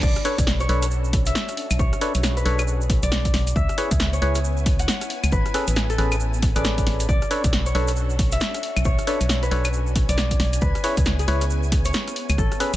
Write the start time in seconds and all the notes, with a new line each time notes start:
Already playing: C#4 D4 G#4
0.03 B1 D4 F#4 A4 D5, kick, crash, shaker
0.15 cross-stick, closed hi-hat, shaker
0.25 D4 A4 B4 C#5, open hi-hat
0.38 B1, kick, closed hi-hat, shaker
0.47 snare, shaker
0.60 C#5, closed hi-hat, shaker
0.69 B1 D4 A4 B4 C#5, open hi-hat
0.82 cross-stick, closed hi-hat, shaker
0.91 shaker
1.05 shaker
1.13 kick, open hi-hat
1.26 E5, closed hi-hat, shaker
1.35 snare, shaker
1.49 cross-stick, closed hi-hat, shaker
1.57 open hi-hat
1.71 B1, closed hi-hat, claves, shaker
1.79 B1 G#4 C#5, kick, shaker
1.93 cross-stick, closed hi-hat, shaker
2.01 D4 A4 B4 C#5, open hi-hat
2.14 B1, closed hi-hat, shaker
2.23 snare, shaker
2.37 B4, closed hi-hat, shaker
2.45 B1 D4 A4 B4 C#5, open hi-hat
2.59 cross-stick, closed hi-hat, claves, shaker
2.67 shaker
2.81 shaker
2.90 kick, open hi-hat
3.03 B1 D5, closed hi-hat, shaker
3.12 snare, shaker
3.25 kick, closed hi-hat, shaker
3.34 B1, snare, open hi-hat
3.47 closed hi-hat, shaker
3.56 C#2 B3 C#4 E4 E5 G#5, kick, shaker
3.69 cross-stick, closed hi-hat, shaker
3.78 E4 G#4 B4 C#5, open hi-hat
3.91 C#2, kick, closed hi-hat, shaker
3.99 snare, shaker
4.13 C#5, closed hi-hat, shaker
4.22 C#2 E4 G#4 B4 C#5, open hi-hat
4.35 cross-stick, closed hi-hat, shaker
4.44 shaker
4.57 shaker
4.66 kick, open hi-hat
4.79 F#5, closed hi-hat, shaker
4.88 snare, shaker
5.01 cross-stick, closed hi-hat, shaker
5.10 open hi-hat
5.24 C#2, closed hi-hat, claves, shaker
5.32 A1 B3 B4, kick, shaker
5.46 cross-stick, closed hi-hat, shaker
5.54 C#4 G#4 A4 B4, open hi-hat
5.68 A1, closed hi-hat, shaker
5.76 snare, shaker
5.90 A4, closed hi-hat, shaker
5.98 A1 C#4 G#4 A4 B4, open hi-hat
6.12 cross-stick, closed hi-hat, claves, shaker
6.20 shaker
6.34 shaker
6.42 kick, open hi-hat
6.56 A1 C#4 G#4 A4 B4 D5, closed hi-hat, shaker
6.64 snare, shaker
6.78 kick, closed hi-hat, shaker
6.87 A1, snare, open hi-hat
7.00 closed hi-hat, shaker
7.09 B1 D4 F#4 A4 D5, kick, shaker
7.22 cross-stick, closed hi-hat, shaker
7.31 D4 A4 B4 C#5, open hi-hat
7.44 B1, kick, closed hi-hat, shaker
7.53 snare, shaker
7.66 C#5, closed hi-hat, shaker
7.75 B1 D4 A4 B4 C#5, open hi-hat
7.88 cross-stick, closed hi-hat, shaker
7.96 shaker
8.10 shaker
8.19 kick, open hi-hat
8.32 E5, closed hi-hat, shaker
8.41 snare, shaker
8.54 cross-stick, closed hi-hat, shaker
8.63 open hi-hat
8.77 B1, closed hi-hat, claves, shaker
8.85 B1 C#5 G#5, kick, shaker
8.99 cross-stick, closed hi-hat, shaker
9.07 D4 A4 B4 C#5, open hi-hat
9.21 B1, closed hi-hat, shaker
9.29 snare, shaker
9.43 B4, closed hi-hat, shaker
9.51 B1 D4 A4 B4 C#5, open hi-hat
9.65 cross-stick, closed hi-hat, claves, shaker
9.73 shaker
9.87 shaker
9.96 kick, open hi-hat
10.09 B1 D5, closed hi-hat, shaker
10.18 snare, shaker
10.31 kick, closed hi-hat, shaker
10.40 B1, snare, open hi-hat
10.53 closed hi-hat, shaker
10.62 C#2 B3 E4 B4, kick, shaker
10.75 cross-stick, closed hi-hat, shaker
10.84 E4 G#4 B4 C#5, open hi-hat
10.97 C#2, kick, closed hi-hat, shaker
11.05 snare, shaker
11.19 G#4, closed hi-hat, shaker
11.28 C#2 E4 G#4 B4 C#5, open hi-hat
11.41 cross-stick, closed hi-hat, shaker
11.50 shaker
11.63 shaker
11.72 kick, open hi-hat
11.85 C#5, closed hi-hat, shaker
11.93 snare, shaker
12.08 cross-stick, closed hi-hat, shaker
12.16 open hi-hat
12.29 C#2, closed hi-hat, claves, shaker
12.38 A1 E4 A4, kick, shaker
12.52 cross-stick, closed hi-hat, shaker
12.60 C#4 G#4 A4 B4, open hi-hat
12.73 A1, shaker